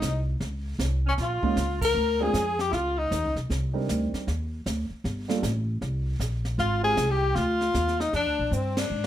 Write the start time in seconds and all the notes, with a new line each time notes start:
Already playing: D#4
0.02 C2, kick, snare, hi-hat pedal
0.40 C#2, brush sweep, kick, snare
0.79 C2, kick, snare, hi-hat pedal
1.06 C#4
1.18 A#1 F4, brush sweep, kick, snare
1.22 F4
1.42 G#3 A#3 C#4 D#4 F4, muted upright bass stroke, kick
1.56 C#2, kick, snare, hi-hat pedal
1.81 A#4, kick, crash
1.94 D2, brush sweep
2.20 G#3 C4 D4 F4 G#4
2.33 F2, kick, snare, hi-hat pedal
2.59 G4, snare
2.70 C#2 E4 F4, brush sweep, kick, snare
2.98 D#4
3.11 D#2, kick, snare, hi-hat pedal
3.23 C#2
3.36 B1, snare
3.50 C2, brush sweep, kick, snare
3.73 G3 C4 D4 D#4 A#4
3.88 D2, kick, snare, hi-hat pedal
4.13 muted upright bass stroke, snare
4.27 D#2, brush sweep, kick, snare
4.66 D2, kick, snare, hi-hat pedal
4.90 muted upright bass stroke
5.04 G1, brush sweep, kick, snare
5.28 G3 A#3 D4 F4 A4, snare
5.43 A1, kick, snare, hi-hat pedal
5.81 C2, brush sweep, kick, snare
6.19 A#1, kick, snare, hi-hat pedal
6.45 snare
6.58 G#1 F4, brush sweep, kick, snare
6.82 G#3 C4 D#4 F4 G4 G#4
6.97 C2, kick, snare, hi-hat pedal
7.10 G4
7.35 D2 F4, brush sweep, kick, snare
7.61 snare
7.74 D#2, kick, snare, hi-hat pedal
7.88 snare
8.00 D#4, snare
8.13 F2 D4, brush sweep, kick, snare
8.26 D2
8.39 A#1
8.51 G2 C4, hi-hat pedal
8.77 D4, snare, ride
8.90 G#2